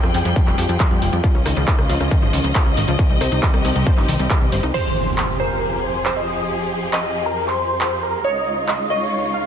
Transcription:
Already playing: F3 C4 G#4 G5
0.03 F2 C4, cross-stick
0.14 F2 F3, open hi-hat
0.25 F2 G3, closed hi-hat
0.36 F3, kick, closed hi-hat
0.47 F1 G3, clap
0.58 F2 G4, open hi-hat
0.69 F2 C4, closed hi-hat
0.80 F3, kick, clap, closed hi-hat
0.91 F2 G3
1.02 F1 F3, open hi-hat
1.13 F2 G3, closed hi-hat
1.24 C#3 C#4 F4 D#5, kick, closed hi-hat
1.35 C#2 C#4
1.46 C#2 D#3, cross-stick, open hi-hat
1.57 C#2 F3, closed hi-hat
1.68 D#3, kick, clap, closed hi-hat
1.78 C#2 F3, cross-stick
1.89 C#2 F4, open hi-hat
2.00 C#2 C#4, cross-stick, closed hi-hat
2.11 D#3, kick, closed hi-hat
2.22 G#1 F3
2.33 C#2 D#3, open hi-hat
2.44 C#2 F3, closed hi-hat
2.55 F4, kick, clap, closed hi-hat
2.66 C#2 C#4
2.77 G#1 D#3, open hi-hat
2.88 C#2 F3, closed hi-hat
2.99 C3 D#3 C4 G4, kick, closed hi-hat
3.10 C2 G3
3.21 C2 C5, cross-stick, open hi-hat
3.32 C2 D#4, closed hi-hat
3.43 D#3, kick, clap, closed hi-hat
3.54 C2 G3, cross-stick
3.65 C2 D#3, open hi-hat
3.76 C2 G3, closed hi-hat
3.86 C5, kick, closed hi-hat
3.97 G1 D#4, clap
4.08 C2 D#3, open hi-hat
4.19 C2 G3, closed hi-hat
4.30 D#3, kick, clap, closed hi-hat
4.41 C2 G3
4.52 G1 C5, open hi-hat
4.63 C2 D#4, closed hi-hat
4.74 F2 F3 G4 G#4 C5, crash, impact
5.18 C5, clap
5.40 A#4 C5
5.84 C5
6.06 C5, clap
6.16 D#5
6.93 D#5, clap
7.26 A#4
7.48 C5, clap
7.81 C5, clap
8.03 A#4
8.24 C#2 C#3 D#4 F4 C#5 D#5
8.68 D#5, clap
8.90 C#5 D#5
9.34 F5

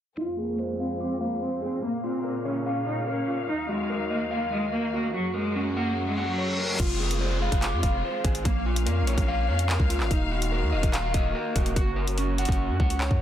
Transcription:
0.17 F2 F3 G#3 C4 F4
0.38 A#3 G#4
0.59 C5
0.80 C4 F5
1.00 C4 D6
1.21 A#3 F5
1.42 C4 C5
1.62 C4 G#4
1.82 A#2 C#3 A#3 F5
2.04 C4 F4
2.24 A#4
2.45 C#4 C#5
2.66 C#4 F5
2.86 D#4 C#5
3.07 C#4 A#4
3.28 F4
3.49 D#2 D#3 F#3 D#4
3.69 G#3 F#4
3.90 A#4
4.10 A#3 D#5
4.31 A#3 F5
4.52 G#3 D#5
4.73 A#3 A#4
4.93 A#3 F#4
5.14 F#2 C#3 F#3 A#3 F#4
5.34 G#3 A#4
5.56 C#4
5.76 A#3 F#5
5.97 reverse cymbal
6.07 G#3
6.18 F#5
6.28 F#3
6.38 C#5
6.59 A#4
6.80 F1 G#3 C4 F4, kick, closed hi-hat, crash, downlifter
7.00 G#4
7.11 closed hi-hat
7.21 C5
7.42 F5
7.52 F1, kick, closed hi-hat
7.62 D6, clap, closed hi-hat
7.73 F2
7.83 F1 F5, kick, closed hi-hat
8.05 C5
8.24 G#1 G#4, kick, closed hi-hat
8.35 closed hi-hat
8.45 A#1 A#3 C#4 F5, kick, closed hi-hat
8.66 F4
8.76 closed hi-hat
8.86 F2 A#4, closed hi-hat
9.02 A#1
9.07 C#5, closed hi-hat
9.18 A#1, kick, closed hi-hat
9.28 F5
9.48 F2 C#5
9.59 closed hi-hat
9.69 A#4, clap
9.80 C#2, kick
9.90 F4, closed hi-hat
10.00 G#1, clap
10.11 D#1 D#3 A#3 D#4 F#4, kick, closed hi-hat
10.31 F#4
10.42 closed hi-hat
10.52 A#4
10.62 D#2
10.72 D#1 D#5
10.83 D#1, kick, closed hi-hat
10.93 F5, clap, closed hi-hat
11.14 D#1 D#5, kick, closed hi-hat
11.35 A#4
11.56 D#1 F#4, kick, closed hi-hat
11.66 closed hi-hat
11.76 F#1 C#4 F#4, kick, closed hi-hat
11.96 A#4
12.07 closed hi-hat
12.18 C#4, closed hi-hat
12.38 F#5, closed hi-hat
12.45 F#1, kick, closed hi-hat
12.52 closed hi-hat
12.69 F#2
12.80 C#2 F#5, kick
12.90 closed hi-hat
13.00 C#5, clap
13.11 F#2, kick

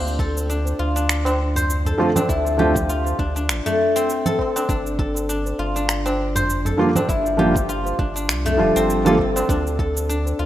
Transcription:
Already playing: D2 A3 C4 D4 F4 G4 C5
0.07 cabasa
0.19 A4, kick
0.37 tabla na, cabasa
0.50 D4, cabasa
0.65 tabla tin, cabasa
0.79 D2 F4, tabla tin
0.96 D4, cabasa
1.09 finger snap, cabasa
1.25 D4, tabla na, cabasa
1.38 tabla tin
1.56 C5, tabla ge, cabasa
1.70 cabasa
1.85 A4, tabla ge, cabasa
1.98 D3 F3 A3 C4 F4
2.15 D4, tabla na, tabla tin, low conga, cabasa
2.29 D2 E4, kick, cabasa
2.47 cabasa
2.57 D3 F3 A3 C4 F4 G4, tabla ge, low conga
2.76 kick, tabla na, cabasa
2.89 F4, cabasa
3.06 tabla tin, cabasa
3.19 D2 D4, kick
3.36 D4, cabasa
3.49 A1, finger snap, cabasa
3.66 A3, tabla ge, cabasa
3.96 C4, cabasa
4.10 cabasa
4.25 A4, tabla tin, low conga, cabasa
4.39 kick, tabla na
4.56 D4, tabla na, cabasa
4.69 G1 D4, kick, cabasa
4.87 cabasa
4.99 A4, kick
5.15 tabla na, cabasa
5.29 D4, cabasa
5.46 tabla tin, cabasa
5.59 G1 F4
5.76 D4, cabasa
5.89 finger snap, cabasa
6.06 D4, tabla na, cabasa
6.19 tabla tin
6.35 C5, tabla ge, cabasa
6.50 cabasa
6.65 A4, tabla ge, cabasa
6.77 D3 F3 G3 A#3 F4
6.96 D4, tabla na, tabla tin, low conga, cabasa
7.09 G1 E4, kick, cabasa
7.26 cabasa
7.37 D3 F3 G3 A#3 F4 G4, tabla ge, low conga
7.56 kick, tabla na, cabasa
7.69 F4, cabasa
7.85 tabla tin, cabasa
7.99 G1 D4, kick
8.16 D4, cabasa
8.29 C2, finger snap, cabasa
8.45 A3, tabla ge, cabasa
8.57 D1 D3 F3 G3 F4
8.76 G1 C4, cabasa
8.90 cabasa
9.05 D3 F3 G3 A#3 F4 A4, tabla tin, low conga, cabasa
9.19 kick, tabla na
9.36 D4, tabla na, cabasa
9.49 D2 D4, kick, cabasa
9.67 cabasa
9.79 A4, kick
9.96 tabla na, cabasa
10.09 D4, cabasa
10.26 tabla tin, cabasa
10.39 D2 F4, tabla tin

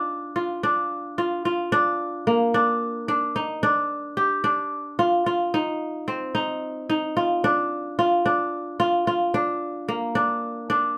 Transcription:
Already playing: D4 F4
0.36 F4
0.63 D4
1.18 F4
1.45 F4
1.72 D4
2.27 A#3
2.54 D4
3.08 D4
3.36 D#4
3.63 D4
4.17 G4
4.44 D4
4.99 F4
5.26 F4
5.54 D#4
6.08 C4
6.35 D#4
6.89 D#4
7.17 F4
7.44 D4
7.99 F4
8.26 D4
8.80 F4
9.07 F4
9.34 D4
9.88 A#3
10.15 D4
10.70 D4

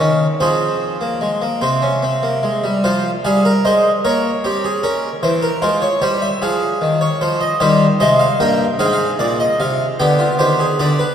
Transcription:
Already playing: C#5
0.00 D#3 C#4
0.40 F3 C4 G#4 C5
1.01 A#3
1.21 G#3
1.42 A#3
1.61 C3 C4 C5
1.82 C#4
2.02 C4
2.23 A#3
2.43 G#3
2.64 G3
2.84 F3 F4 C5
3.25 G3 G#4 F5
3.45 A#4
3.65 G#3 C5 D#5
4.05 A#3 A#4 C#5
4.44 C4 G4
4.64 G#4
4.83 C#4 A#4
5.23 E3 C5
5.42 A#4
5.62 G#3 F4 C5
5.82 C#5
6.02 G3 G4 C5
6.22 E5
6.42 F3 G#4 F5
6.81 D#3
7.01 C#5
7.21 F3 C5
7.41 D#5
7.60 D#3 G3 G4 C5
8.00 C3 G#3 C5 D#5
8.19 F5
8.40 G2 A#3 A#4 G5
8.79 G#2 C4 G#4 F5
8.86 G5
8.93 F5
9.19 A#2 D5
9.40 D#5
9.60 C3 F5
10.00 D3 B3 G4 G5
10.19 F4
10.39 D#3 G4 C5
10.59 G#4
10.79 D3 G4 D5
10.99 B4

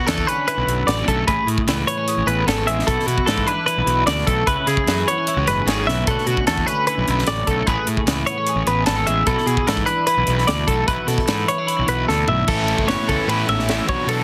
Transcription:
Already playing: B3 F#4
0.07 E2 D3 A4, snare, closed hi-hat
0.18 kick
0.27 C#4 B4, closed hi-hat
0.47 E4 B4, closed hi-hat
0.57 B1
0.66 B1 F#2, closed hi-hat
0.87 A1 B3 D5, snare, closed hi-hat
0.97 C#4
1.08 B1 A3 A4, kick, closed hi-hat
1.27 A1 A2 G#4 B4, kick, closed hi-hat
1.46 A2, closed hi-hat
1.58 kick
1.66 C#2 E3, snare, closed hi-hat
1.87 B3 C#5, closed hi-hat
1.98 C#4
2.08 G#4, closed hi-hat
2.17 A1
2.26 A1 E2 B4, closed hi-hat
2.46 G#1 B3 A4, snare, closed hi-hat
2.57 C#4
2.66 A1 G#3 E5, closed hi-hat
2.79 snare
2.86 B1 B2 E4 A4, kick, closed hi-hat
2.99 snare
3.07 B2 F#4, closed hi-hat
3.18 kick
3.26 G#2 E3 A4, snare, closed hi-hat
3.37 kick
3.47 D4 B4, closed hi-hat
3.66 E4 B4, closed hi-hat
3.77 B1
3.86 B1 B2, closed hi-hat
4.06 D2 D4 D5, snare, closed hi-hat
4.19 snare
4.27 B1 A3 A4, kick, closed hi-hat
4.46 C#2 C#3 E4 B4, kick, closed hi-hat
4.67 C#3 G#4, snare, closed hi-hat
4.77 kick
4.86 F#2 E3, snare, closed hi-hat
5.07 B3 C#5, closed hi-hat
5.18 C#4
5.27 E4, closed hi-hat
5.36 C#2 F#4
5.47 F#1 G#2 B4, snare, closed hi-hat
5.65 G#1 C#4 G#4, snare, closed hi-hat
5.79 snare
5.86 B1 B3 E5, snare
6.07 B1 B2 D3 A3 C#4 F#4 A4, kick, closed hi-hat
6.18 snare
6.27 B2 F#4, closed hi-hat
6.37 kick
6.47 E2 D3 A4, snare, closed hi-hat
6.58 kick
6.67 C#4 B4, closed hi-hat
6.87 E4 B4, closed hi-hat
6.98 B1
7.07 B1 F#2, closed hi-hat
7.19 snare
7.27 A1 D5, snare, closed hi-hat
7.47 B1 A3 A4, kick, closed hi-hat
7.67 A1 A2 G#4 B4, kick, closed hi-hat
7.87 A2, closed hi-hat
7.97 kick
8.06 C#2 E3, snare, closed hi-hat
8.26 B3 C#5, closed hi-hat
8.38 C#4
8.47 G#4, closed hi-hat
8.55 A1
8.66 A1 E2 B4, closed hi-hat
8.86 G#1 B3 A4, snare, closed hi-hat
8.97 C#4
9.07 A1 G#3 E5, closed hi-hat
9.27 B1 B2 E4 A4, kick, closed hi-hat
9.38 snare
9.46 B2 G#4, closed hi-hat
9.57 kick
9.67 G#2 E3 A4, snare, closed hi-hat
9.77 kick
9.86 D4 B4, closed hi-hat
10.07 E4 B4, closed hi-hat
10.17 B1
10.26 B1 B2, closed hi-hat
10.38 snare
10.47 D2 D4 D5, snare, closed hi-hat
10.67 B1 A3 A4, kick, closed hi-hat
10.87 B1 B2 E4 B4, kick, closed hi-hat
11.07 B2 A4, snare, closed hi-hat
11.18 kick, snare
11.28 G#2 E3, snare, closed hi-hat
11.48 B3 C#5, closed hi-hat
11.58 D4
11.67 E4, closed hi-hat
11.79 B1
11.88 B1 B2 B4, closed hi-hat
12.08 D2 D4 A4, snare
12.28 B1 A3 E5, floor tom
12.47 A1 A2 E3 A3 C#4 E4 A4, kick, crash
12.68 ride
12.78 F#1, kick
12.88 E3 A3 B3 C#4 E4 C#5, snare, ride
13.08 C#2 E3 A3 C#4 E4 A4, kick, ride
13.27 A2 E3 A3 C#4 B4, ride
13.31 E4
13.48 A1 G#2 A3 C#4 E4 E5, ride
13.59 snare
13.69 A2, snare, ride
13.88 B1 B2 F#3 B3 D4 F#4 C#5, kick, ride
14.06 B2 F#3 B3 D4 F#4 A4, ride

